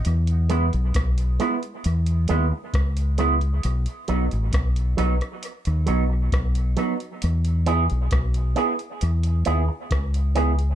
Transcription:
<<
  \new Staff \with { instrumentName = "Clean electric guitar" } { \time 4/4 \key e \major \tempo 4 = 67 r8 <gis b e'>8 r8 <gis b e'>8 r8 <gis b e'>8 r8 <gis b e'>8 | r8 <fis b dis'>8 r8 <fis b dis'>8 r8 <fis b dis'>8 r8 <fis b dis'>8 | r8 <b e' gis'>8 r8 <b e' gis'>8 r8 <b e' gis'>8 r8 <b e' gis'>8 | }
  \new Staff \with { instrumentName = "Fingered electric bass" } { \clef bass \time 4/4 \key e \major e,8. b,,16 b,,8 r8 e,8 dis,16 r16 cis,4 | b,,16 r16 b,,16 a,,16 b,,8 b,,16 r8 dis,16 b,,8 b,,8 r8 | e,8. b,,16 b,,8 r8 e,8 dis,16 r16 cis,4 | }
  \new DrumStaff \with { instrumentName = "Drums" } \drummode { \time 4/4 hh16 hh16 hh16 hh16 <hh bd ss>16 hh16 hh16 hh16 hh16 hh16 hh8 <hh bd ss>16 hh16 hh16 hh16 | hh16 hh16 hh16 hh16 <hh bd ss>16 hh16 hh16 <hh ss>16 hh16 hh16 hh8 <hh bd ss>16 hh16 hh16 hh16 | hh16 hh16 hh16 hh16 <hh bd ss>16 hh16 hh16 hh16 hh16 hh16 hh8 <hh bd ss>16 hh16 hh16 hh16 | }
>>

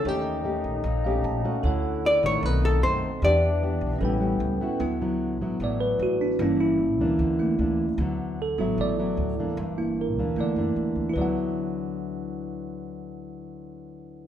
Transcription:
<<
  \new Staff \with { instrumentName = "Hollow-body jazz guitar" } { \time 4/4 \key d \major \tempo 4 = 151 g'2.~ g'8 r8 | r4 d''8 cis''8 b'8 a'8 c''4 | d''2 r2 | r1 |
r1 | r1 | r1 | r1 |
r1 | }
  \new Staff \with { instrumentName = "Tine electric piano" } { \time 4/4 \key d \major << { r2 r8 f''8 a''4 | r1 | r1 | r2 d''8 b'8 fis'8 d'8 |
cis'8 e'8 r2. | r4 a'4 d''4. r8 | r4 bes'4 d''4. r8 | r1 |
r1 | } \\ { <ees' a' des'' g''>1 | <a' cis'' fis''>2 <b c' a' dis''>2 | <d' g' b' e''>2 <cis' a' b' g''>2 | <fis b e'>8 r2. r8 |
<bes e'>8 r2 <a bes e'>8 r4 | r4. <fis b e'>4. r4 | r8 <bes e'>4. <a bes e'>8 r4. | <e' b' d'' fis''>1~ |
<e' b' d'' fis''>1 | } >> }
  \new Staff \with { instrumentName = "Trombone" } { \time 4/4 \key d \major ees'1 | e'2 dis'4. r8 | d'2 e'4. r8 | r1 |
r1 | r1 | r1 | r1 |
r1 | }
  \new Staff \with { instrumentName = "Nylon-string guitar" } { \time 4/4 \key d \major << { <a des' g'>4 <a des' g'>4 r8 <a des' g'>4 <a des' fis'>8~ | <a des' fis'>4. <ees a>4. <dis a c'>8 r8 | <b d' g'>8 r8 <b d' g'>4 <g b cis'>8 <g b cis'>4 <b e' fis'>8~ | <b e' fis'>8 <fis b e'>4 <fis b e'>8 <fis b e'>4. r8 |
<e bes d'>4 r8 <e bes d'>4. <e bes d'>8 r8 | <fis b e'>4 r8 <fis b e'>4 <fis b e'>4 <e bes d'>8~ | <e bes d'>4. <e bes d'>4 <e bes d'>4. | <d fis b e'>1~ |
<d fis b e'>1 | } \\ { ees2 bes,2 | d2 b,2 | e2 a,2 | d2 a,2 |
g,2 d2 | d2 a,2 | g,2 d2 | r1 |
r1 | } >> }
  \new Staff \with { instrumentName = "Upright bass" } { \clef bass \time 4/4 \key d \major ees,4. bes,,8 bes,,4 bes,,8 r8 | d,4. a,,8 b,,4 fis,8 r8 | e,4. b,,8 a,,4 cis,8 r8 | d,4. a,,8 a,,4 a,,4 |
g,,4. d,8 d,4 d,4 | d,4. a,,8 a,,4 d,4 | g,,4. d,8 d,8 fis,8 e,8 d,8 | d,1~ |
d,1 | }
>>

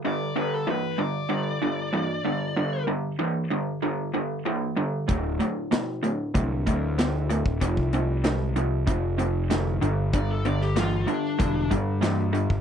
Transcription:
<<
  \new Staff \with { instrumentName = "Lead electric guitar" } { \time 4/4 \key g \major \tempo 4 = 95 d''8 b'16 a'16 b'8 d''2~ d''8~ | d''8 r2. r8 | r1 | r1 |
d''16 a'16 d''16 g'16 f'8 d'4 r4. | }
  \new Staff \with { instrumentName = "Overdriven electric guitar" } { \clef bass \time 4/4 \key g \major <g, d>8 <g, d>8 <g, e>8 <g, d>8 <g, d>8 <g, d>8 <g, e>8 <g, d>8 | <g, d>8 <g, d>8 <g, e>8 <g, d>8 <g, d>8 <g, d>8 <g, e>8 <g, d>8 | <d, a,>8 <d, a,>8 <d, b,>8 <d, a,>8 <d, a,>8 <d, a,>8 <d, b,>8 <d, a,>8 | <f, c>8 <f, c>8 <f, d>8 <f, c>8 <f, c>8 <f, c>8 <f, d>8 <g, d>8 |
<g, d>8 <g, d>8 <g, e>8 <g, d>8 <g, d>8 <g, d>8 <g, e>8 <g, d>8 | }
  \new Staff \with { instrumentName = "Picked electric bass" } { \clef bass \time 4/4 \key g \major r1 | r1 | d,,8 r4. c,8 d,4~ d,16 d,,16 | f,,16 c,4.~ c,16 f,,4. g,,8~ |
g,,4. r8 e,,8 g,4~ g,16 g,,16 | }
  \new DrumStaff \with { instrumentName = "Drums" } \drummode { \time 4/4 r4 r4 r4 r4 | r4 r4 r4 r4 | <hh bd>8 hh8 <hh sn>8 hh8 <hh bd>8 <hh bd>8 <hh sn>8 hh16 bd16 | <hh bd>16 bd16 hh8 <hh sn>8 hh8 <hh bd>8 hh8 <hh sn>8 hh8 |
<hh bd>8 hh16 sn16 <hh sn>8 hh8 <hh bd>8 <hh bd>8 <hh sn>8 hh16 bd16 | }
>>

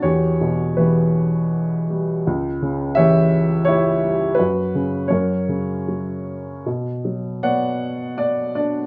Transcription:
<<
  \new Staff \with { instrumentName = "Upright piano" } { \time 3/4 \key b \minor \tempo 4 = 82 << { cis''4 b'4. r8 | r4 e''4 cis''4 | b'4 cis''4. r8 | r4 fis''4 d''8 d''8 | } \\ { <fis' g'>4 <fis' g'>4. r8 | r4 <g' cis''>4 <e' g'>4 | fis'4 <fis' ais'>4. r8 | r4 <cis'' d''>4. r8 | } >> }
  \new Staff \with { instrumentName = "Upright piano" } { \clef bass \time 3/4 \key b \minor e,8 b,8 e4. g8 | cis,8 cis8 e4. g8 | fis,8 cis8 fis,8 cis8 fis4 | b,8 fis8 b4. d'8 | }
>>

